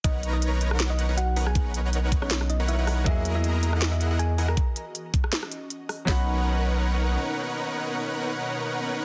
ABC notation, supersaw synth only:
X:1
M:4/4
L:1/16
Q:"Swing 16ths" 1/4=159
K:B
V:1 name="Supersaw synth"
[DABcf]2 [DABca]4 [DABca] [DABcf]4 [DABcf] z2 [DABcf] z | [DABcf]2 [DABcf]4 c [DABcf] z3 [DABcf]2 [DABcf]3 | z2 [EGAda]4 [EGAda] [EGAdf]4 [EGAdf] z2 [EGAdf] z | z16 |
[DABcf]16- | [DABcf]16 |]